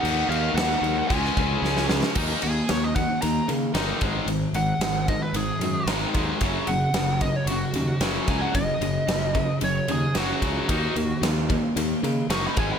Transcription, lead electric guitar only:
\new Staff \with { instrumentName = "Lead electric guitar" } { \time 4/4 \key dis \minor \tempo 4 = 113 fis''8 eis''8 fis''4 gis''4. r8 | r8 gis'8 cis''16 dis''16 fis''8 ais''8 r4. | r8 fis''4 dis''16 b'16 gis'4 r4 | r8 fis''4 dis''16 cis''16 fis'4 r8 gis''16 fis''16 |
dis''2 cis''8 gis'8 fis'4~ | fis'4 r2 cis'''16 b''16 gis''16 b''16 | }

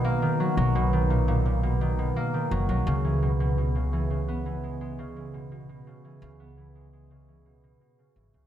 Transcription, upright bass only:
\new Staff \with { instrumentName = "Upright bass" } { \clef bass \time 4/4 \key cis \dorian \tempo 4 = 85 b,,16 r8 b,,2~ b,,16 r8 fis,,16 b,,16 | cis,1~ | cis,16 r8 cis,2~ cis,16 r8 gis,,16 cis,16 | }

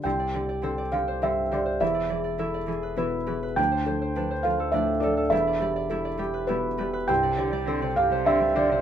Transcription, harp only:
\new Staff \with { instrumentName = "Harp" } { \time 3/4 \key c \major \tempo 4 = 102 c'16 d''16 d''16 d''16 c'16 d''16 g'16 c''16 c'8 c''16 c''16 | e'16 d''16 d''16 d''16 e'16 d''16 gis'16 b'16 e'8 b'16 b'16 | d'16 c''16 c''16 c''16 d'16 c''16 f'16 a'16 d'8 a'16 a'16 | e'16 d''16 d''16 d''16 e'16 d''16 g'16 b'16 e'8 b'16 b'16 |
c'16 d''16 d''16 d''16 c'16 d''16 g'16 c''16 c'8 c''16 c''16 | }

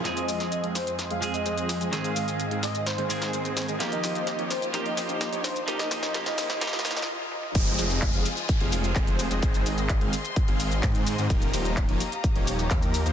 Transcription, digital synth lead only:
\new Staff \with { instrumentName = "Digital synth lead" } { \time 4/4 \key f \minor \tempo 4 = 128 r16 ees''4~ ees''16 c''8 r16 f''8 ees''8. r8 | r16 f''8. r8 ees''8 c''4. r8 | r16 ees''4~ ees''16 c''8 r16 ees''4~ ees''16 c''8 | r16 ees''8. r16 ees''8. r16 ees''16 r16 ees''16 r4 |
r1 | r1 | r1 | }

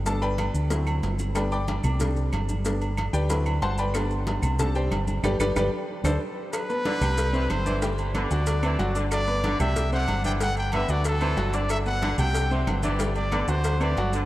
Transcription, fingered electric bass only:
\new Staff \with { instrumentName = "Fingered electric bass" } { \clef bass \time 4/4 \key g \major \tempo 4 = 185 g,,4. d,4. g,,4~ | g,,4. c,4. g,,4~ | g,,4. d,4. g,,4~ | g,,4. c,4. g,,4 |
g,,8 g,,8 g,,8 r4 d,8 r4 | r4. c,4. g,,4~ | g,,4. d,4. g,,4~ | g,,4. c,4. g,,4~ |
g,,4. d,4. g,,4~ | g,,4. c,4. g,,4~ | g,,4. d,4. g,,4 | }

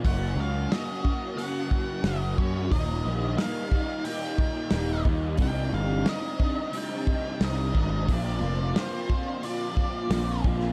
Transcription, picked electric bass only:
\new Staff \with { instrumentName = "Picked electric bass" } { \clef bass \time 4/4 \key c \minor \tempo 4 = 89 ges,,8 des,8 r2 ges,,8 ges,8 | ees,,8 bes,,8 r2 ees,,8 ees,8 | c,8 g,,8 r2 c,8 aes,,8 | bes,,8 f,,8 r2 bes,,8 bes,,8 | }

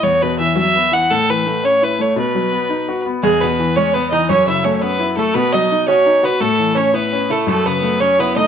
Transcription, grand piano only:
\new Staff \with { instrumentName = "Grand piano" } { \time 6/8 \key b \mixolydian \tempo 4. = 113 e,8 b,8 e8 fis8 b8 e8 | a,8 e8 a8 cis'8 e'8 a8 | b,8 fis8 b8 dis'8 fis'8 b8 | e,8 b,8 e8 gis8 b8 e8 |
fis,8 cis8 a8 cis'8 e'8 a8 | b,8 fis8 dis'8 fis'8 dis'8 fis'8 | a,8 e8 cis'8 e'8 cis'8 e'8 | fis,8 cis8 a8 cis'8 e'8 a8 | }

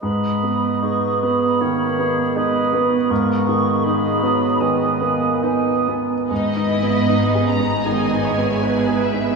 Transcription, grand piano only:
\new Staff \with { instrumentName = "Grand piano" } { \time 4/4 \key gis \minor \tempo 4 = 78 gis,8 b8 dis'8 b8 dis8 b8 dis'8 b8 | gis,8 dis8 dis'8 b8 dis8 b8 dis'8 b8 | \tuplet 3/2 { gis,8 dis'8 b8 dis'8 gis'8 dis'8 dis8 dis'8 b8 dis'8 gis'8 dis'8 } | }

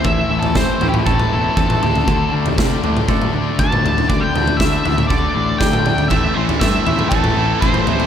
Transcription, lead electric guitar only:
\new Staff \with { instrumentName = "Lead electric guitar" } { \time 4/4 \key a \minor \tempo 4 = 119 \tuplet 3/2 { e''4 a'8 c''4 g'8 } a'2~ | a'8 r2 r8 a''4 | d''16 g''8. e''4 d''4 g''4 | e''8 c''8 e''4 a'4 c''4 | }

